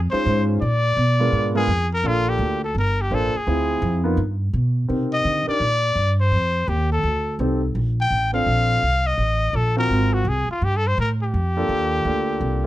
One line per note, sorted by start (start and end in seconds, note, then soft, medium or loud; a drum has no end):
0.00 0.11 F2 medium
0.10 0.59 G#3 medium
0.10 0.59 C#4 medium
0.10 0.59 D#4 medium
0.10 0.59 F4 medium
0.10 0.45 C5 medium
0.10 0.59 C5 medium
0.10 muted upright bass stroke soft
0.26 0.60 G#2 medium
0.62 0.96 A#2 medium
0.62 1.51 D5 medium
0.97 1.31 B2 medium
1.19 1.53 G#3 medium
1.19 1.53 B3 medium
1.19 1.53 D4 medium
1.19 1.53 F4 medium
1.19 1.53 A#4 medium
1.32 1.67 G#2 medium
1.55 1.67 G#3 medium
1.55 1.67 B3 medium
1.55 1.67 D4 medium
1.55 1.67 F4 medium
1.55 1.89 G#4 loud
1.55 1.67 A#4 medium
1.67 2.02 F2 medium
1.94 2.09 A#4 medium
2.03 2.38 A#1 medium
2.03 2.57 A#3 medium
2.03 2.58 D4 medium
2.03 2.58 F4 medium
2.03 2.58 A4 medium
2.07 2.31 F4 medium
2.29 2.63 G4 medium
2.38 2.74 D2 medium
2.64 2.75 A4 medium
2.75 3.09 G1 medium
2.75 3.03 A#4 medium
3.01 3.16 G4 medium
3.11 3.32 A1 medium
3.11 3.31 A#3 medium
3.11 3.31 D4 medium
3.11 3.31 F4 medium
3.11 3.38 A4 medium
3.11 3.31 C5 medium
3.35 4.06 G#4 medium
3.35 muted upright bass stroke soft
3.47 3.81 D2 medium
3.47 4.00 C4 medium
3.47 4.00 E4 medium
3.47 4.00 F4 medium
3.47 4.01 G#4 medium
3.82 4.17 F2 medium
4.04 4.16 B3 medium
4.04 4.17 D#4 medium
4.04 4.17 F4 medium
4.04 4.17 A#4 medium
4.17 4.52 G2 medium
4.53 4.88 B2 medium
4.88 5.24 C3 medium
4.88 5.43 C4 medium
4.88 5.43 D#4 soft
4.88 5.43 G4 soft
4.88 5.43 A#4 medium
5.13 5.46 D#5 medium
5.25 5.46 D3 medium
5.47 5.59 D4 medium
5.47 5.59 D#4 medium
5.47 5.59 G4 medium
5.47 5.59 A#4 medium
5.47 6.16 D5 loud
5.47 muted upright bass stroke soft
5.60 5.95 A#2 medium
5.95 6.31 G2 medium
6.21 6.70 C5 medium
6.32 6.67 F2 medium
6.68 7.02 D#2 medium
6.68 6.91 G4 medium
6.92 7.37 A4 medium
7.03 7.38 D2 medium
7.39 7.74 C2 medium
7.39 7.60 C4 medium
7.39 7.60 D#4 medium
7.39 7.60 G4 medium
7.39 7.60 A4 medium
7.75 8.10 A#1 medium
8.01 8.33 G5 medium
8.10 8.45 A1 medium
8.33 8.80 C4 medium
8.33 8.79 D4 medium
8.33 8.80 F4 medium
8.33 8.80 A4 medium
8.33 9.08 F5 loud
8.46 8.81 A#1 medium
8.83 9.17 C2 medium
9.07 9.57 D#5 medium
9.18 9.53 A1 medium
9.53 9.88 A#1 medium
9.53 9.77 A4 medium
9.76 10.23 C4 medium
9.76 10.23 F4 medium
9.76 10.23 F#4 medium
9.76 10.23 A#4 medium
9.76 10.15 A#4 medium
9.89 10.24 G#1 medium
10.14 10.30 F#4 medium
10.25 10.46 C2 medium
10.25 10.50 G#4 medium
10.48 10.65 F4 medium
10.48 muted upright bass stroke soft
10.61 10.96 G2 medium
10.61 10.78 G4 medium
10.77 10.89 A4 medium
10.87 10.98 C5 medium
10.98 11.32 A2 medium
10.98 11.10 A#4 medium
11.23 12.66 G4 medium
11.34 11.68 F2 medium
11.57 12.03 A#3 medium
11.57 12.03 D4 medium
11.57 12.03 F4 medium
11.57 12.03 A4 medium
11.69 12.04 D#2 medium
12.05 12.40 D2 medium
12.05 12.59 A#3 medium
12.05 12.59 D4 medium
12.05 12.59 F4 medium
12.05 12.59 A4 medium
12.41 12.66 C2 medium